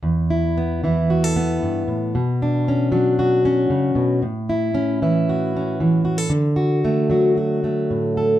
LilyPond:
\new Staff \with { instrumentName = "Steel-string acoustic guitar" } { \time 4/4 \key a \mixolydian \tempo 4 = 115 << { r8 e'8 b8 e'8 fis'16 a'16 b4. | r8 d'8 cis'8 d'8 fis'8 cis'4. | r8 e'8 cis'8 e'8 fis'8 cis'4 fis'16 a'16 | r8 fis'8 a8 fis'8 fis'8 a4 a'8 | } \\ { e,4. e4. g,8 a,8 | b,4. fis4. cis8 b,8 | a,4. e4. e4 | d4. fis4. a,4 | } >> }